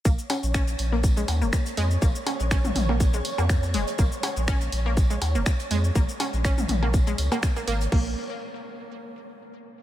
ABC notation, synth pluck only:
X:1
M:4/4
L:1/16
Q:"Swing 16ths" 1/4=122
K:Bbm
V:1 name="Synth pluck"
B, z D z D z2 B, z A, z B, z2 A, z | B, z D z D z2 B, z A, z B, z2 A, z | B, z D z D z2 B, z A, z B, z2 A, z | B, z D z D z2 B, z A, z B, z B, B, z |
B,2 z12 z2 |]